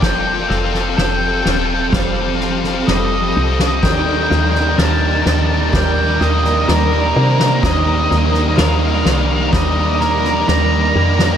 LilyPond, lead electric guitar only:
\new Staff \with { instrumentName = "Lead electric guitar" } { \time 4/4 \key ees \lydian \tempo 4 = 63 g''8 f''8 g''4 f''4 ees''4 | g''4 a''4 g''8 ees''8 bes'4 | ees''4 f''4 ees''8 bes'8 bes''4 | }